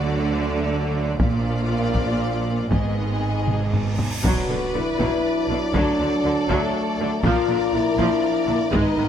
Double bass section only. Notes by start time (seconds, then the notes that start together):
Already playing: D2
1.20 A#1
2.69 G#1
4.24 B1
4.49 B1
4.73 B1
4.99 B1
5.48 B1
5.74 D2
5.99 D2
6.24 D2
6.48 D2
6.98 D2
7.23 A#1
7.48 A#1
7.72 A#1
7.96 A#1
8.47 A#1
8.71 G#1
8.96 G#1